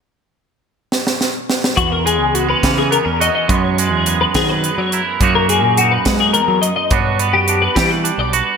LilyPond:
<<
  \new Staff \with { instrumentName = "Clean electric guitar" } { \time 6/8 \key e \lydian \tempo 4. = 70 r2. | fis'16 ais'16 gis'8 fis'16 b'8 gis'16 ais'8 dis''16 dis''16 | cis''8 b'16 gis'8 b'16 gis'16 b'8 cis''16 ais'8 | fis'16 ais'16 gis'8 fis'16 b'8 gis'16 ais'8 dis''16 dis''16 |
cis''8 b'16 g'8 b'16 g'16 b'8 d''16 b'8 | }
  \new Staff \with { instrumentName = "Clean electric guitar" } { \time 6/8 \key e \lydian << { r2. | r8 gis8 b16 cis'8. b16 cis'16 fis'8 | <fis gis b>8 gis8 b4 b8 e'8 | <fis ais dis' fis'>8 ais8 dis'2 |
<b d' fis'>8 b8 d'4 d'8 fis'8 | } \\ { r2. | e,4. e4. | fis,4. fis4. | fis,2 e,8 fis,8 |
r4. g4. | } >> }
  \new Staff \with { instrumentName = "Picked electric bass" } { \clef bass \time 6/8 \key e \lydian r2. | e,8. cis,8. cis8. e,8 r16 | fis,8. e,8. dis8. fis8 r16 | fis,8. ais,8. gis8. fis8 r16 |
g,8. fis,8. e8. b,,8 r16 | }
  \new DrumStaff \with { instrumentName = "Drums" } \drummode { \time 6/8 r4. sn16 sn16 sn8 sn16 sn16 | <hh bd>8 hh8 hh8 <hh bd sn>8 hh8 hh8 | <hh bd>8 hh8 hh8 <hh bd sn>8 hh8 hh8 | <hh bd>8 hh8 hh8 <hh bd sn>8 hh8 hh8 |
<hh bd>8 hh8 hh8 <hh bd sn>8 hh8 hh8 | }
>>